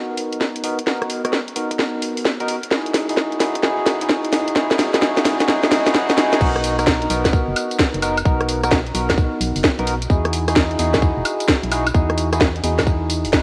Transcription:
Already playing: tine electric piano B3 D#4 F#4 A#4
0.17 open hi-hat
0.32 closed hi-hat
0.41 kick, snare
0.56 closed hi-hat
0.64 tine electric piano B3 D#4 F#4 A#4, open hi-hat
0.79 closed hi-hat
0.87 tine electric piano B3 D#4 F#4 A#4, kick, snare
1.02 cross-stick, closed hi-hat
1.10 open hi-hat
1.25 tine electric piano B3 D#4 F#4 A#4, cross-stick, closed hi-hat
1.33 kick, snare
1.48 closed hi-hat
1.56 tine electric piano B3 D#4 F#4 A#4, open hi-hat
1.71 kick, closed hi-hat
1.79 kick, snare
2.02 open hi-hat
2.17 open hi-hat
2.25 kick, snare
2.40 tine electric piano B3 D#4 F#4 A#4, closed hi-hat
2.48 open hi-hat
2.63 closed hi-hat
2.71 tine electric piano D#4 E4 F#4 G#4, kick, snare
2.86 closed hi-hat
2.94 snare, open hi-hat
3.09 tine electric piano D#4 E4 F#4 G#4, open hi-hat
3.17 kick, snare
3.32 closed hi-hat
3.41 tine electric piano D#4 E4 F#4 G#4, snare, open hi-hat
3.56 kick, closed hi-hat
3.63 tine electric piano D#4 E4 F#4 G#4, kick, snare
3.87 snare, open hi-hat
4.02 tine electric piano D#4 E4 F#4 G#4, closed hi-hat
4.10 kick, snare
4.25 closed hi-hat
4.33 tine electric piano D#4 E4 F#4 G#4, snare, open hi-hat
4.48 closed hi-hat
4.56 tine electric piano D#4 E4 F#4 G#4, kick, snare
4.71 snare, closed hi-hat
4.79 snare, open hi-hat
4.94 tine electric piano D#4 E4 F#4 G#4, snare, closed hi-hat
5.02 tine electric piano D#4 E4 F#4 G#4, kick, snare
5.17 snare, closed hi-hat
5.25 snare, open hi-hat
5.40 tine electric piano D#4 E4 F#4 G#4, kick, snare, closed hi-hat
5.48 tine electric piano D#4 E4 F#4 G#4, kick, snare
5.63 snare
5.71 tine electric piano D#4 E4 F#4 G#4, snare, open hi-hat
5.86 snare, open hi-hat
5.94 tine electric piano D#4 E4 F#4 G#4, kick, snare
6.10 snare, closed hi-hat
6.17 tine electric piano D#4 E4 F#4 G#4, snare, open hi-hat
6.33 snare, closed hi-hat
6.41 fm bass B1, tine electric piano B3 D#4 F#4 A#4, kick, crash, tambourine
6.56 cross-stick, closed hi-hat
6.64 open hi-hat, tambourine
6.79 tine electric piano B3 D#4 F#4 A#4, cross-stick, open hi-hat, tambourine
6.87 kick, snare, tambourine
7.02 closed hi-hat
7.10 fm bass B1, tine electric piano B3 D#4 F#4 A#4, open hi-hat, tambourine
7.25 kick, cross-stick, snare, closed hi-hat, tambourine
7.33 kick, tambourine
7.48 fm bass F#1
7.56 open hi-hat, tambourine, high woodblock
7.71 closed hi-hat, tambourine
7.79 kick, snare, tambourine
7.94 fm bass F#1, closed hi-hat
8.02 tine electric piano B3 D#4 F#4 A#4, open hi-hat, tambourine, high woodblock
8.17 closed hi-hat, tambourine, high woodblock
8.25 fm bass B1, tine electric piano B3 D#4 F#4 A#4, kick, tambourine
8.40 cross-stick, closed hi-hat
8.49 open hi-hat, tambourine
8.63 tine electric piano B3 D#4 F#4 A#4, cross-stick, closed hi-hat, tambourine
8.71 kick, snare, tambourine
8.87 closed hi-hat
8.95 fm bass B1, tine electric piano B3 D#4 F#4 A#4, open hi-hat, tambourine
9.10 kick, cross-stick, snare, closed hi-hat, tambourine, high woodblock
9.18 kick, tambourine
9.41 fm bass B1, open hi-hat, tambourine
9.56 fm bass F#1, open hi-hat, tambourine
9.64 kick, snare, tambourine
9.79 fm bass B1, tine electric piano B3 D#4 F#4 A#4, closed hi-hat
9.87 open hi-hat, tambourine
10.02 closed hi-hat, tambourine
10.10 fm bass E2, tine electric piano D#4 E4 F#4 G#4, kick, tambourine
10.25 cross-stick, closed hi-hat
10.33 open hi-hat, tambourine
10.48 tine electric piano D#4 E4 F#4 G#4, cross-stick, open hi-hat, tambourine
10.56 kick, snare, tambourine
10.71 closed hi-hat
10.79 fm bass E2, tine electric piano D#4 E4 F#4 G#4, open hi-hat, tambourine
10.94 kick, cross-stick, snare, closed hi-hat, tambourine
11.02 kick, tambourine
11.17 fm bass E1
11.25 open hi-hat, tambourine, high woodblock
11.40 closed hi-hat, tambourine
11.48 kick, snare
11.63 fm bass B1, closed hi-hat
11.72 tine electric piano D#4 E4 F#4 G#4, open hi-hat, tambourine, high woodblock
11.87 closed hi-hat, tambourine, high woodblock
11.95 fm bass E2, tine electric piano D#4 E4 F#4 G#4, kick, tambourine
12.10 cross-stick, closed hi-hat
12.18 open hi-hat, tambourine
12.33 tine electric piano D#4 E4 F#4 G#4, cross-stick, closed hi-hat, tambourine
12.41 kick, snare, tambourine
12.56 closed hi-hat
12.64 fm bass E2, tine electric piano D#4 E4 F#4 G#4, open hi-hat, tambourine
12.79 kick, cross-stick, snare, closed hi-hat, tambourine, high woodblock
12.87 kick, tambourine
13.10 open hi-hat, tambourine
13.25 fm bass E1, open hi-hat, tambourine
13.33 tine electric piano D#4 E4 F#4 B4, kick, snare, tambourine

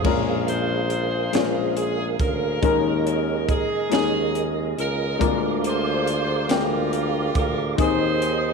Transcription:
Already playing: saxophone section C#4 F4 G#4
0.04 tuba A#1, upright piano A#2 G#3 A#3 C#4 F4 A#4, tonewheel organ G#4 A#4 F5, kick, crash
0.48 saxophone section F4 G#4 C5, closed hi-hat
0.90 closed hi-hat
1.33 tuba A#1, upright piano G#3 A#3 C#4 F4 C5, saxophone section A#4, snare, closed hi-hat
1.76 saxophone section G#4, closed hi-hat
2.19 tuba D2, saxophone section C#4 A#4, kick, closed hi-hat
2.62 tuba D#2, upright piano D#3 G#3 A#3 C#4 D#4 A#4, tonewheel organ A#4 D#5, kick, closed hi-hat
3.07 saxophone section A#4, closed hi-hat
3.49 saxophone section G#4, kick, closed hi-hat
3.90 tuba D#2, upright piano G#3 A#3 C#4 D#4 G#4, saxophone section G#4, snare, closed hi-hat
4.35 closed hi-hat
4.78 tuba C#2, saxophone section F4 A#4, closed hi-hat
5.19 tuba D2, upright piano D3 G#3 A#3 C4 F4 A#4, tonewheel organ A#4 F5 D6, kick, closed hi-hat
5.27 upright piano D4
5.64 saxophone section F4 G#4 C5, closed hi-hat
6.07 closed hi-hat
6.49 tuba D2, upright piano G#3 A#3 D4 F4 G5, saxophone section F4 A#4, snare, closed hi-hat
6.93 closed hi-hat
7.35 tuba D2, saxophone section A#4, kick, closed hi-hat
7.76 tuba D#2, upright piano D#3 C4 D#4 G#4, saxophone section D#4 G#4, kick, closed hi-hat
7.80 tonewheel organ C5 D#5 D#6, saxophone section C5
8.22 closed hi-hat

